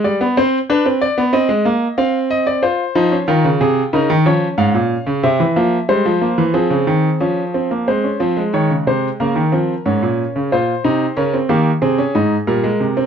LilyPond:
<<
  \new Staff \with { instrumentName = "Grand piano" } { \time 4/4 \key f \minor \tempo 4 = 92 << { d''8 c''8 b'8 d''8 ees''4 f''8 ees''16 d''16 | c''4 bes'8 aes'8 bes'8 des''8 f''4 | e''4 c''4 aes'2 | c''4 des''8 c''8 bes'2 |
c''4 bes'8 g'8 aes'4 bes'4 | } \\ { g16 b16 c'8 d'16 c'8 b16 c'16 aes16 bes8 c'4 | f'8 ees'16 des'16 f'4 ees'8 des'4. | c'8 bes8 aes8 bes8 c'4 des'8 c'16 bes16 | c'16 des'16 c'16 aes4~ aes16 bes8 c'8 des'4 |
f'8 ees'8 des'16 c'16 bes8 c'16 des'16 ees'8 g16 aes8 c'16 | } >> }
  \new Staff \with { instrumentName = "Grand piano" } { \clef bass \time 4/4 \key f \minor r1 | r8 f8 ees16 des16 c8 des16 ees16 f8 aes,16 bes,8 des16 | c16 e16 f8 g16 f8 e16 f16 des16 ees8 f4 | aes8 f8 ees16 des16 c8 des16 ees16 f8 aes,16 bes,8 des16 |
bes,8 c8 des8 ees8 c8 aes,8 bes,8 c8 | }
>>